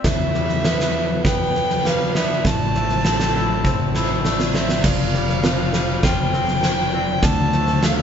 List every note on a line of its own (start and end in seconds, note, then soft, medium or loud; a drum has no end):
0.04 2.40 E2 medium
0.04 1.55 E2 medium
0.04 1.21 E5 medium
0.04 0.65 E5 medium
0.04 kick medium
0.04 snare medium
0.35 1.84 G3 soft
0.35 snare soft
0.49 snare soft
0.65 1.24 B3 soft
0.65 1.24 B4 medium
0.65 snare medium
0.80 snare medium
1.25 2.14 B3 medium
1.25 1.84 B4 medium
1.25 1.88 G5 medium
1.25 kick medium
1.25 snare medium
1.55 snare soft
1.70 snare soft
1.85 2.45 G3 medium
1.85 2.15 B4 medium
1.85 2.16 F5 medium
1.85 snare medium
2.15 2.45 B3 soft
2.15 2.75 D5 medium
2.15 2.48 E5 medium
2.15 snare medium
2.45 4.80 A1 medium
2.45 3.95 A2 soft
2.45 4.25 A5 medium
2.45 kick medium
2.45 snare medium
2.75 4.23 A3 soft
2.75 3.05 C5 medium
2.75 snare soft
2.90 snare soft
3.05 3.63 C4 medium
3.05 3.65 A4 medium
3.05 snare medium
3.20 snare medium
3.34 3.94 E4 medium
3.64 4.53 C4 medium
3.64 4.25 C5 medium
3.64 kick medium
3.64 snare soft
3.95 4.84 E4 medium
3.95 snare soft
4.25 4.84 A3 medium
4.25 4.83 D5 medium
4.25 snare medium
4.40 snare soft
4.54 4.84 C4 soft
4.54 4.86 E5 medium
4.54 snare medium
4.69 snare medium
4.84 7.19 F1 medium
4.84 5.43 F3 soft
4.84 5.44 D5 medium
4.84 6.06 F5 medium
4.84 kick medium
4.84 snare medium
4.84 crash medium
5.14 5.73 G3 soft
5.14 snare soft
5.29 snare soft
5.44 6.62 F3 soft
5.44 6.02 C5 medium
5.44 snare medium
5.73 7.23 G3 soft
5.73 snare medium
6.03 7.23 F4 medium
6.03 6.62 C5 medium
6.03 7.25 G5 medium
6.03 kick medium
6.03 snare medium
6.33 6.93 C4 soft
6.33 snare soft
6.48 snare soft
6.63 7.23 F3 soft
6.63 6.93 C5 medium
6.63 snare medium
6.94 7.23 C4 soft
6.94 7.53 D5 medium
7.23 8.02 D2 medium
7.23 7.82 D3 medium
7.23 7.86 A5 medium
7.23 kick medium
7.23 snare medium
7.53 8.02 A3 medium
7.53 7.83 C5 medium
7.53 snare soft
7.67 snare soft
7.83 8.02 D3 soft
7.83 8.02 A4 medium
7.83 8.02 F5 medium
7.83 snare medium